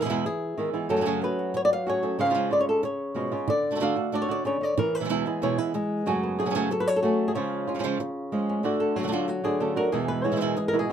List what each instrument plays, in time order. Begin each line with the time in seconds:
Already playing: nylon-string guitar E3
0.01 nylon-string guitar B2 E3 G#3 B3 E4 G#4
0.05 nylon-string guitar B2 E3 G#3 B3 E4
0.10 nylon-string guitar E2 B2 E3 G#3 B3 E4
0.26 nylon-string guitar G#4, muted nylon-string guitar stroke
0.58 nylon-string guitar D#3 E3 G#3 B3 E4
0.73 nylon-string guitar E3 G#3 B3 E4
0.89 nylon-string guitar F#2 C#3 F#3 A3 C#4 G#4 A4
0.96 nylon-string guitar C#3 F#3 A3 C#4 G#4
1.01 nylon-string guitar C#3 F#3 A3 C#4 G#4
1.05 nylon-string guitar F#2 C#3 F#3 A3 C#4 G#4
1.22 nylon-string guitar F#3 A3 C#4 G#4 B4
1.39 nylon-string guitar F#4
1.54 nylon-string guitar C#5, muted nylon-string guitar stroke
1.65 nylon-string guitar D5
1.73 nylon-string guitar F5
1.86 nylon-string guitar F#3 A3 C#4 F#4 G#4 C#5
2.03 nylon-string guitar F#3 A3 C#4 G#4 A4
2.19 nylon-string guitar C#3 F3 G#3 C#4 F4 F5
2.25 nylon-string guitar F3 G#3 C#4 F4
2.30 nylon-string guitar F3 G#3 C#4 F4
2.34 nylon-string guitar C#3 F3 G#3 C#4 F4
2.51 nylon-string guitar G#3 C#4 F4 D5
2.61 nylon-string guitar C#5
2.69 nylon-string guitar A4
2.83 nylon-string guitar C#5, muted nylon-string guitar stroke
3.15 nylon-string guitar B2 F3 G#3 C#4 F4
3.31 nylon-string guitar C#3 G#3 C#4 F4
3.48 nylon-string guitar D3 D5, muted nylon-string guitar stroke
3.71 nylon-string guitar D3 A3 D4 F#4
3.75 nylon-string guitar D3 A3 D4 F#4
3.80 nylon-string guitar D3 A3 D4 F#4 F5
3.96 nylon-string guitar A3 D4 F#4
4.12 nylon-string guitar D3 A3 D4 F#4 D5
4.22 nylon-string guitar C#5
4.29 nylon-string guitar A3 D4 F#4 D5
4.45 nylon-string guitar C#3 C#5, muted nylon-string guitar stroke
4.61 nylon-string guitar D3 D5
4.77 nylon-string guitar E3 A#4, muted nylon-string guitar stroke
4.95 nylon-string guitar B4
5.00 nylon-string guitar B2 E3 G#3 B3 E4
5.05 nylon-string guitar B2 E3 G#3 B3 E4
5.09 nylon-string guitar E2 B2 E3 G#3 B3 E4
5.26 nylon-string guitar E3 G#3 B3 E4 G#4
5.42 nylon-string guitar E2 B2 E3 G#3 B3 E4 C#5
5.58 nylon-string guitar E3 G#3 B3 E4 B4
5.74 nylon-string guitar G#3, muted nylon-string guitar stroke
6.06 nylon-string guitar F#2 C#3 F#3 A3 C#4 F#4 G#4
6.23 nylon-string guitar B3
6.39 nylon-string guitar F#3 A3 C#4 G#4
6.46 nylon-string guitar C#3 F#3 A3 C#4 G#4
6.50 nylon-string guitar C#3 F#3 A3 C#4 G#4
6.55 nylon-string guitar F#2 C#3 F#3 A3 C#4 F#4 G#4
6.71 nylon-string guitar A4, muted nylon-string guitar stroke
6.80 nylon-string guitar B4
6.87 nylon-string guitar C#5
6.96 nylon-string guitar A4
7.03 nylon-string guitar F#3 A3 C#4 F#4 G#4
7.28 nylon-string guitar G#4
7.35 nylon-string guitar C#3 F3 G#3 C#4 F4 C#5
7.67 nylon-string guitar G#3 C#4 F4
7.74 nylon-string guitar F3 G#3 C#4 F4
7.79 nylon-string guitar F3 G#3 C#4 F4
7.83 nylon-string guitar C#3 F3 G#3 C#4 F4
8.00 muted nylon-string guitar stroke
8.32 nylon-string guitar F3 G#3 C#4 F4
8.49 nylon-string guitar C#4
8.63 nylon-string guitar D3 A3 D4 F#4 D5
8.80 nylon-string guitar A4
8.96 nylon-string guitar D3 F#3 A3 D4 F#4 G#4
9.00 nylon-string guitar D3 A3 D4 F#4
9.05 nylon-string guitar D3 A3 F#4
9.09 nylon-string guitar D3 D4 F4 F#4
9.13 nylon-string guitar A3 D4 F#4
9.28 nylon-string guitar F#4, muted nylon-string guitar stroke
9.44 nylon-string guitar D3 A3 D4 F#4 G#4
9.60 nylon-string guitar C#3 D3 A3 D4 F#4 A4
9.76 nylon-string guitar D3 A3 D4 F#4 A#4
9.92 nylon-string guitar E2 B2 E3 G#3 B3 E4 G#4
10.08 nylon-string guitar B4
10.24 nylon-string guitar E3 G#3 B3 E4 C#5
10.32 nylon-string guitar B2 E3 G#3 B3 E4
10.36 nylon-string guitar B2 E3 G#3 B3 E4
10.41 nylon-string guitar E2 B2 E3 G#3 B3 E4 A#4
10.57 nylon-string guitar G#4, muted nylon-string guitar stroke
10.68 nylon-string guitar A#4
10.73 nylon-string guitar B2 E3 G#3 B3 E4
10.79 nylon-string guitar G#4
10.89 nylon-string guitar E3